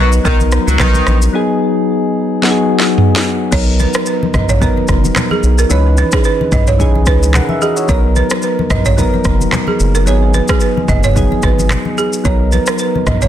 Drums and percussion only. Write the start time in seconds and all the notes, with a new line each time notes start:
0.13 shaker
0.25 kick, low conga, shaker
0.40 high conga, shaker
0.52 cross-stick, shaker
0.68 high conga, shaker
0.80 kick, cross-stick, clap, high conga, low conga, shaker
0.94 high conga, shaker
1.07 cross-stick, shaker
1.22 shaker
2.43 snare
2.80 snare
2.98 mid tom
3.16 snare
3.52 kick, crash, shaker
3.79 high conga, shaker
3.94 cross-stick, shaker
4.06 shaker
4.23 high conga
4.34 kick, cross-stick, mid tom, low conga, shaker
4.49 mid tom, shaker
4.62 kick, low conga, shaker
4.77 high conga
4.88 kick, cross-stick, shaker
5.04 high conga, shaker
5.16 cross-stick, clap, high conga, low conga, shaker
5.31 high conga
5.43 shaker
5.58 shaker
5.70 shaker
5.97 high conga, shaker
6.12 kick, cross-stick, shaker
6.24 shaker
6.41 high conga
6.52 kick, mid tom, low conga, shaker
6.67 mid tom, shaker
6.80 kick, low conga, shaker
6.95 high conga
7.06 kick, cross-stick, shaker
7.22 high conga, shaker
7.34 cross-stick, clap, high conga, low conga, shaker
7.49 high conga
7.62 shaker
7.77 shaker
7.89 kick, shaker
8.16 high conga, shaker
8.30 cross-stick, shaker
8.42 shaker
8.59 high conga
8.70 kick, cross-stick, mid tom, low conga, shaker
8.85 mid tom, shaker
8.98 kick, low conga, shaker
9.14 high conga
9.24 kick, cross-stick, shaker
9.40 high conga, shaker
9.53 cross-stick, clap, high conga, low conga, shaker
9.67 high conga
9.80 shaker
9.95 shaker
10.07 shaker
10.34 high conga, shaker
10.48 kick, cross-stick, shaker
10.60 shaker
10.77 high conga
10.88 kick, mid tom, low conga, shaker
11.03 mid tom, shaker
11.16 kick, low conga, shaker
11.32 high conga
11.42 kick, cross-stick, shaker
11.59 high conga, shaker
11.71 cross-stick, clap, high conga, low conga, shaker
11.85 high conga
11.98 shaker
12.13 shaker
12.25 kick, shaker
12.52 high conga, shaker
12.67 cross-stick, shaker
12.78 shaker
12.96 high conga
13.07 kick, cross-stick, mid tom, low conga, shaker
13.22 mid tom, shaker